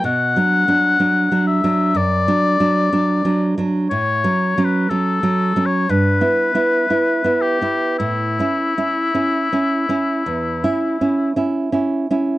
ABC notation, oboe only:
X:1
M:4/4
L:1/16
Q:1/4=60
K:Amix
V:1 name="Oboe"
f6 e2 d6- d z | c3 B A3 c B6 G2 | E12 z4 |]